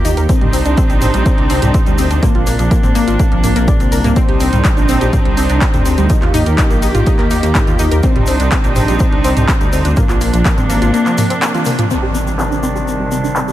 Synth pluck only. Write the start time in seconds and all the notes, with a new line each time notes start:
0.05 D#4
0.17 A#4
0.29 C4
0.41 G3
0.53 C4
0.66 D4
0.77 C4
0.90 G4
1.02 C4
1.14 G3
1.26 C4
1.38 D4
1.50 C4
1.62 G4
1.74 C4
1.87 G3
1.98 C4
2.11 D4
2.23 A#3
2.35 F4
2.47 A#3
2.59 F3
2.71 A#3
2.83 C4
2.95 A#3
3.07 F4
3.19 A#3
3.32 F3
3.44 A#3
3.56 A#3
3.68 D5
3.80 C4
3.92 A#4
4.04 A#3
4.16 C4
4.29 G4
4.40 C4
4.53 G3
4.65 C4
4.77 D4
4.89 C4
5.01 G4
5.13 C4
5.25 G3
5.37 C4
5.50 D4
5.61 C4
5.74 G4
5.86 C4
5.98 G3
6.10 D#4
6.22 F4
6.34 D#4
6.46 A#4
6.58 D#4
6.70 A#3
6.82 D#4
6.95 F4
7.07 D#4
7.19 A#4
7.31 D#4
7.43 A#3
7.55 D#4
7.67 F4
7.79 D#4
7.91 A#4
8.03 C4
8.16 G3
8.28 C4
8.40 D4
8.52 C4
8.64 G4
8.76 C4
8.88 G3
9.00 C4
9.13 D4
9.24 C4
9.37 G4
9.48 C4
9.61 G3
9.73 C4
9.85 D4
9.97 A#3
10.09 F4
10.21 A#3
10.33 F3
10.45 A#3
10.58 C4
10.70 A#3
10.82 F4
10.94 A#3
11.06 F3
11.18 A#3
11.30 C4
11.42 A#3
11.54 F4
11.66 A#3
11.79 F3
11.91 C4
12.03 G4
12.15 C4
12.27 G3
12.39 C4
12.51 D4
12.63 C4
12.75 G4
12.87 C4
13.00 G3
13.11 C4
13.24 D4
13.36 C4
13.48 G4